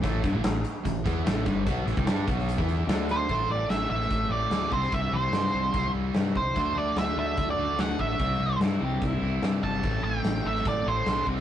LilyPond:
<<
  \new Staff \with { instrumentName = "Lead electric guitar" } { \time 4/4 \key a \dorian \tempo 4 = 147 r1 | r2. r8 c''8~ | c''8 d''8 e''8 e''4 d''4 c''8 | e''8 c''2 r4 c''8~ |
c''8 d''8 e''8 e''8. d''8. fis''8 e''8~ | e''4 r2 r8 a''8~ | a''8 g''4 e''8 d''8 c''4 r8 | }
  \new Staff \with { instrumentName = "Overdriven electric guitar" } { \time 4/4 \key a \dorian r1 | r1 | r1 | r1 |
r1 | r4 e'8 g'8 e'4~ e'16 r8. | r1 | }
  \new Staff \with { instrumentName = "Distorted electric guitar" } { \clef bass \time 4/4 \key a \dorian <a, e a>8 <g, d>16 <a, e>16 <a, e>8 r8 <a, e>8 <e b e'>8 <a, e a>8 <g, d g>8 | <b, fis b>8 <a, e>16 <c g>16 <g d' g'>8 <b, fis b>8. <e b e'>8. <d a d'>4 | <a, e a c' e'>2~ <a, e a c' e'>8 <a, e a c' e'>8 <a, e a c' e'>8 <c e g c' e'>8~ | <c e g c' e'>2 <c e g c' e'>8 <c e g c' e'>4 r8 |
<d a d' fis'>2~ <d a d' fis'>8 <d a d' fis'>8 <d a d' fis'>4 | <c e g c' e'>2~ <c e g c' e'>8 <c e g c' e'>8 <c e g c' e'>4 | <a, e a c' e'>2~ <a, e a c' e'>8 <a, e a c' e'>8 <a, e a c' e'>8 <c g c' e'>8 | }
  \new Staff \with { instrumentName = "Overdriven electric guitar" } { \clef bass \time 4/4 \key a \dorian <a, e a>8 <g, d>16 <a, e>16 <a, e>8 r8 <a, e>8 <e b e'>8 <a, e a>8 <g, d g>8 | <b, fis b>8 <a, e>16 <c g>16 <g d' g'>8 <b, fis b>8. <e b e'>8. <d a d'>4 | <a, e a>4. <a, e a>2 <c g c'>8~ | <c g c'>4 <c g c'>2~ <c g c'>8 r8 |
<d a d'>4. <d a d'>2~ <d a d'>8 | <c g c'>4. <c g c'>2~ <c g c'>8 | <a, e a>4. <a, e a>2 <c g c'>8 | }
  \new Staff \with { instrumentName = "Fingered electric bass" } { \clef bass \time 4/4 \key a \dorian a,,8 g,,16 a,,16 a,,8 r8 a,,8 e,8 a,,8 g,,8 | b,,8 a,,16 c,16 g,8 b,,8. e,8. d,4 | a,,8 a,,8 a,,8 a,,8 a,,8 a,,8 d,8 c,8 | c,8 c,8 g,8 c,8 c,8 c,8 g,8 c,8 |
d,8 d,8 d,8 d,8 d,8 d,8 d,8 a,,8 | c,8 c,8 g,8 c,8 c,8 c,8 g,8 g,,8 | a,,8 a,,8 a,,8 a,,8 a,,8 a,,8 b,,8 c,8 | }
  \new DrumStaff \with { instrumentName = "Drums" } \drummode { \time 4/4 <hh bd>8 <hh bd>8 <hh sn>8 hh8 <hh bd>8 <hh bd>8 <hh sn>8 <hh bd>8 | <hh bd>8 hh16 bd16 <hh sn>8 <hh bd>16 sn16 hh16 bd16 hh8 <hh sn>8 <hh sn>8 | <hh bd>4 <hh sn>8. sn16 <hh bd>4 <hh sn>8 bd16 sn16 | <hh bd>4 <hh sn>4 <hh bd>4 <hh sn>8 bd8 |
<hh bd>4 <hh sn>4 <hh bd>4 <hh sn>8 bd8 | <hh bd>4 <hh sn>4 <hh bd>4 <hh sn>8 bd8 | <hh bd>4 <hh sn>8. sn16 <hh bd>4 <hh sn>8 bd16 sn16 | }
>>